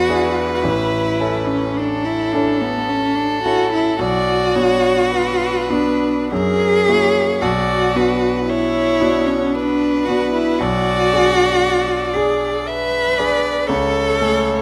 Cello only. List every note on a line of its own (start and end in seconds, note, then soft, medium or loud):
0.00 0.54 F#4 loud
0.55 0.65 F#4 medium
0.63 1.50 E4 medium
1.48 1.78 C#4 medium
1.77 2.06 D4 medium
2.05 2.35 E4 medium
2.33 2.63 D4 medium
2.61 2.91 B3 medium
2.89 3.17 C#4 medium
3.16 3.43 D4 medium
3.44 3.71 F#4 medium
3.73 3.99 E4 medium
4.00 5.72 F#4 loud
5.70 6.32 D4 medium
6.31 7.43 G#4 loud
7.42 8.45 F#4 medium
8.46 9.28 E4 loud
9.27 9.55 C#4 medium
9.53 10.07 D4 medium
10.05 10.32 F#4 medium
10.33 10.60 E4 medium
10.59 12.15 F#4 loud
12.13 12.68 G#4 medium
12.67 13.69 B4 loud
13.68 14.62 A4 loud